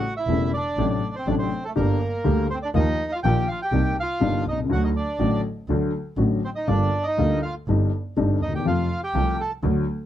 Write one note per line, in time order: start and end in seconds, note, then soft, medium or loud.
0.00 0.14 F#4 medium
0.00 0.13 F#5 medium
0.17 0.52 E4 medium
0.17 0.51 E5 medium
0.27 0.48 E1 medium
0.27 0.49 E1 medium
0.27 0.49 E2 medium
0.27 0.49 C#3 medium
0.27 0.49 G3 medium
0.27 0.49 A3 soft
0.27 0.49 E4 medium
0.54 0.89 D4 medium
0.54 0.88 D5 medium
0.77 0.98 A1 medium
0.77 0.99 A1 medium
0.77 0.99 A2 medium
0.77 0.99 C3 medium
0.77 0.99 F#3 medium
0.77 0.99 A3 medium
0.77 0.99 D4 medium
0.90 1.15 D4 medium
0.90 1.15 D5 medium
1.15 1.28 C4 medium
1.15 1.27 C5 medium
1.27 1.48 A1 medium
1.27 1.48 A2 medium
1.27 1.48 C3 medium
1.27 1.48 F#3 medium
1.27 1.48 A3 medium
1.27 1.48 D4 medium
1.27 1.35 D4 medium
1.27 1.33 D5 medium
1.39 1.64 C4 soft
1.39 1.65 C5 medium
1.65 1.73 A3 medium
1.65 1.70 A4 medium
1.75 1.97 G1 medium
1.75 1.98 G1 medium
1.75 1.97 G2 medium
1.75 1.97 D3 medium
1.75 1.97 G3 medium
1.75 1.97 A#3 medium
1.75 1.97 G4 medium
1.75 2.46 A#4 medium
1.80 2.48 A#3 medium
2.24 2.46 D2 medium
2.24 2.46 D3 medium
2.24 2.46 G3 soft
2.24 2.46 A#3 soft
2.24 2.46 G4 medium
2.50 2.59 C4 medium
2.50 2.56 C5 medium
2.63 2.70 D4 medium
2.63 2.68 D5 medium
2.74 2.95 D#2 medium
2.74 2.95 D#2 loud
2.74 2.95 D#3 medium
2.74 2.95 F3 medium
2.74 2.95 A#3 medium
2.74 2.95 F4 medium
2.74 3.13 D#5 medium
2.79 3.11 D#4 medium
3.12 3.20 F4 medium
3.12 3.17 F5 medium
3.23 3.44 A#1 medium
3.23 3.45 A#1 medium
3.23 3.45 A#2 medium
3.23 3.44 D#3 medium
3.23 3.45 F3 medium
3.23 3.44 A#3 medium
3.23 3.45 F4 medium
3.23 3.48 G4 medium
3.23 3.49 G5 loud
3.48 3.61 F4 medium
3.48 3.59 F5 medium
3.62 3.97 G4 medium
3.62 3.95 G5 medium
3.72 3.93 C2 medium
3.72 3.93 C3 medium
3.72 3.93 G3 medium
3.72 3.93 A#3 medium
3.72 3.93 D#4 medium
4.00 4.45 F4 medium
4.00 4.44 F5 medium
4.20 4.42 G1 medium
4.20 4.42 G2 medium
4.20 4.41 C3 medium
4.20 4.42 G3 medium
4.20 4.42 A#3 medium
4.20 4.42 D#4 medium
4.47 4.70 C2 soft
4.47 4.60 D#4 medium
4.47 4.59 D#5 medium
4.52 4.58 B1 soft
4.57 4.64 C2 medium
4.64 4.70 C#2 medium
4.69 4.90 D2 medium
4.69 4.91 D2 medium
4.69 4.91 D3 medium
4.69 4.90 F#3 medium
4.69 4.91 A3 medium
4.69 4.91 F#4 medium
4.69 4.83 F#5 medium
4.74 4.84 F#4 medium
4.84 4.90 D#4 soft
4.84 4.89 D#5 medium
4.96 5.42 D4 medium
4.96 5.41 D5 medium
5.19 5.40 A1 medium
5.19 5.40 A2 medium
5.19 5.40 D3 medium
5.19 5.40 F#3 medium
5.19 5.40 A3 medium
5.19 5.40 F#4 medium
5.68 5.89 D2 medium
5.68 5.90 D2 medium
5.68 5.90 D3 medium
5.68 5.90 F#3 soft
5.68 5.90 A3 medium
5.68 5.90 F#4 medium
6.17 6.39 A1 medium
6.17 6.39 A2 medium
6.17 6.38 D3 medium
6.17 6.39 F#3 medium
6.17 6.39 A3 soft
6.17 6.39 F#4 medium
6.45 6.50 C4 soft
6.45 6.50 C5 medium
6.55 6.68 D#4 soft
6.55 6.68 D#5 medium
6.67 6.89 G1 medium
6.67 6.89 G2 medium
6.67 6.89 D3 medium
6.67 6.89 G3 medium
6.67 6.89 A#3 soft
6.67 7.04 D4 medium
6.67 6.89 F4 medium
6.67 7.06 D5 medium
7.04 7.41 D#4 medium
7.04 7.39 D#5 medium
7.18 7.39 D2 medium
7.18 7.39 D3 medium
7.18 7.39 G3 soft
7.18 7.39 A#3 soft
7.18 7.39 F4 medium
7.43 7.55 F4 medium
7.43 7.54 F5 medium
7.68 7.88 G1 medium
7.68 7.89 G1 medium
7.68 7.89 G2 medium
7.68 7.89 D3 medium
7.68 7.89 G3 medium
7.68 7.89 C4 medium
7.68 7.89 D#4 medium
8.17 8.37 G1 medium
8.17 8.37 G2 medium
8.17 8.37 D3 medium
8.17 8.37 G3 medium
8.17 8.37 C4 medium
8.17 8.37 D#4 medium
8.42 8.64 D#2 soft
8.42 8.54 D#4 medium
8.42 8.53 D#5 medium
8.48 8.54 D2 soft
8.53 8.59 D#2 soft
8.53 8.66 G4 soft
8.53 8.67 G5 medium
8.59 8.65 E2 medium
8.65 8.86 F2 medium
8.65 8.86 C3 medium
8.65 8.86 F3 medium
8.65 8.86 A3 soft
8.65 8.86 F4 medium
8.65 9.01 F4 medium
8.65 9.00 F5 medium
9.04 9.37 G4 medium
9.04 9.41 G5 medium
9.14 9.35 C2 medium
9.14 9.35 C3 medium
9.14 9.35 F3 medium
9.14 9.35 A3 medium
9.14 9.35 F4 medium
9.41 9.51 A4 medium
9.41 9.52 A5 medium
9.63 9.83 D2 medium
9.63 9.83 D3 medium
9.63 9.83 F#3 medium
9.63 9.84 A3 medium
9.63 9.83 F#4 medium